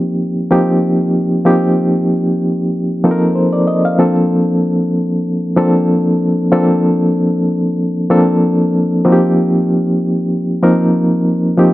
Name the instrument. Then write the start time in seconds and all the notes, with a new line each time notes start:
reed electric piano
Already playing: F3 A#3 C4 D#4 G4
0.51 F3 A#3 C4 D#4 G4
1.45 F3 A#3 C4 D#4 G4
3.04 F3 A#3 C4 D#4 A4
3.11 A#4
3.35 C5
3.53 D5
3.67 D#5
3.85 F5
3.98 F3 A#3 C4 D4 A4
5.57 F3 A#3 C4 D4 A4
6.52 F3 A#3 C4 D4 A4
8.10 F3 A#3 C4 D4 A4
9.05 F3 A#3 C4 D#4 F#4
9.12 G4
10.62 F3 A#3 C4 D#4 A#4
11.58 F3 A#3 C4 D#4 G4